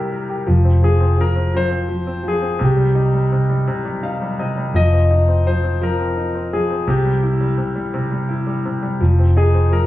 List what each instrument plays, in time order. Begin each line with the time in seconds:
Already playing: fingered electric bass C2, upright piano C3 G3 E4 G4 A#4
0.12 upright piano A#4
0.29 upright piano G4
0.46 fingered electric bass F1, upright piano F3
0.64 upright piano C4
0.82 upright piano F3, grand piano G#4
1.00 upright piano C4
1.18 upright piano F3, grand piano A#4
1.36 upright piano C4
1.54 upright piano F3, grand piano C5
1.71 upright piano C4
1.89 upright piano F3
2.07 upright piano C4
2.24 upright piano F3
2.28 grand piano G#4
2.42 upright piano C4
2.59 fingered electric bass C2, upright piano C3
2.65 grand piano G4
2.77 upright piano G3
2.95 upright piano D#4
3.13 upright piano G3
3.32 upright piano C3
3.49 upright piano G3
3.68 upright piano C3
3.85 upright piano G3
4.03 upright piano D#4 F5
4.22 upright piano G3
4.39 upright piano C3 D#5
4.58 upright piano G3
4.74 fingered electric bass F1, upright piano F3, grand piano D#5
4.93 upright piano C4
5.11 upright piano D#4
5.28 upright piano C4
5.47 upright piano F3, grand piano C5
5.63 upright piano C4
5.82 upright piano F3, grand piano A#4
6.00 upright piano C4
6.17 upright piano D#4
6.35 upright piano C4
6.53 upright piano F3, grand piano G#4
6.70 upright piano C4
6.87 fingered electric bass C2, upright piano C3, grand piano G4
7.05 upright piano G3
7.23 upright piano E4
7.40 upright piano G3
7.57 upright piano C3
7.75 upright piano G3
7.94 upright piano C3
8.11 upright piano G3
8.29 upright piano E4
8.47 upright piano G3
8.65 upright piano C3
8.83 upright piano G3
9.01 fingered electric bass F1, upright piano F3
9.19 upright piano C4
9.37 upright piano D#4, grand piano G#4
9.54 upright piano C4
9.72 upright piano F3, grand piano A#4